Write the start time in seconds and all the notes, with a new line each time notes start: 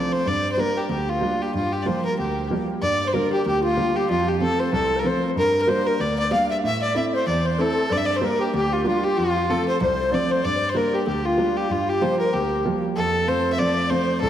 Already playing: F3 A3 C4 D5
0.12 C5
0.26 G2 D5
0.52 C5
0.57 G3 A#3 D4 A#4
0.77 G4
0.89 D2 G4
1.09 F4
1.21 G3 A#3 D4
1.42 G4
1.54 G2 F4
1.73 G4
1.82 F3 G3 D5
1.86 A#3 C5
2.05 A#4
2.19 D2 G4
2.50 F3 G3 A#3
2.81 G2 D5
3.06 C5
3.13 D3 G3 A#3 A#4
3.31 G4
3.45 D2 G4
3.62 F4
3.76 D3 G3 A#3
3.95 G4
4.09 F2 F4
4.26 G4
4.40 F3 A3 C4 A4
4.59 C5
4.72 C2 A4
4.96 A#4 C5
5.04 F3 A3 C4 C5
5.36 G2 A#4
5.61 A#4
5.67 G3 A#3 D4 C5
5.86 A#4
5.99 D2 D5
6.18 D5
6.31 G3 A#3 D4 F5
6.45 F5
6.49 E5
6.63 A2 E5
6.82 D5
6.95 A3 C4 E4 E5
7.14 C5
7.26 E2 D5
7.45 C5
7.58 A3 C4 E4 A4
7.90 G2 D5
7.97 E5
8.04 D5
8.15 C5
8.21 G3 A#3 D4 A#4
8.39 G4
8.53 D2 G4
8.73 F4
8.85 G3 A#3 D4 F4
9.04 G4
9.17 F2 F4
9.49 F3 A3 C4 A4
9.68 C5
9.80 C2 C5
10.11 F3 A3 C4 D5
10.30 C5
10.43 G2 D5
10.69 C5
10.74 G3 A#3 D4 A#4
10.94 G4
11.04 D2 G4 A4
11.08 G4
11.25 F4
11.38 G3 A#3 D4
11.57 G4
11.69 G2 F4
11.89 G4
12.01 F3 G3 A#3 C5
12.19 A#4
12.33 D2 G4
12.65 F3 G3 A#3
12.96 F2 A4
13.27 F3 A3 C4 C5
13.53 E5
13.58 F3 A3 C4 D5
13.76 D5
13.90 F3 A3 C4 C5
14.21 C2 A4